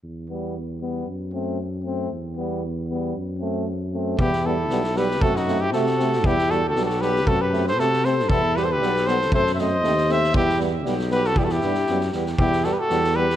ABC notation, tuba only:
X:1
M:2/4
L:1/8
Q:"Swing 16ths" 1/4=117
K:Em
V:1 name="Tuba" clef=bass
E,,4 | F,,4 | E,,4 | F,,4 |
E,,2 B,,,2 | F,,2 C,2 | E,,2 B,,,2 | F,,2 C,2 |
E,,2 B,,,2 | F,,2 ^D,,2 | E,,2 B,,,2 | E,, G,, F,, E,, |
E,,2 E,,2 |]